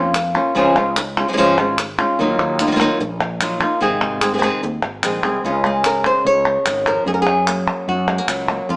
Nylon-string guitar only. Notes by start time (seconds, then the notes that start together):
Already playing: A#2 A#3 C#4 F4
0.15 muted nylon-string guitar stroke
0.35 A#3 C#4 F4
0.55 C#3 F3 G#3 C#4 F4
0.76 G#3 C#4 F4
0.97 muted nylon-string guitar stroke
1.17 G#3 C#4 F4
1.28 F3 G#3 C#4 F4
1.33 F3 G#3 C#4 F4
1.37 C#3 F3 G#3 C#4 F4
1.58 G#3 C#4 F4
1.79 muted nylon-string guitar stroke
1.98 G#3 C#4 F4
2.19 D#3 F#3 A#3 D#4 F4
2.60 A#3 D#4 F4
2.67 F#3 A#3 D#4 F4
2.71 F#3 A#3 D#4 F4
2.76 F#3 A#3 D#4 F4
2.80 D#3 F#3 A#3 D#4 F4
3.00 muted nylon-string guitar stroke
3.40 F#3 A#3 D#4 F4
3.60 A#3 D#4 F4
3.80 C3 D#3 G#3 C4 G#4
4.21 G#3 C4 G#4
4.34 D#3 G#3 C4 G#4
4.38 D#3 G#3 C4 G#4
4.43 C3 D#3 G#3 C4 G#4
4.63 muted nylon-string guitar stroke
5.03 D#3 G#3 C4 G#4
5.23 G#3 C4 G#4
5.45 C#3 G#3 C#4 F4
5.65 G#3 G#4
5.86 A#4
6.06 C5
6.26 C#5
6.66 D#3
6.87 F3 A#4
7.07 F#2 G#4
7.14 A#4
7.22 G#4
7.27 F#3
7.48 A#3
7.89 F#4
8.08 G#3
8.18 A#3
8.29 F#3
8.50 A#3
8.69 F2 F4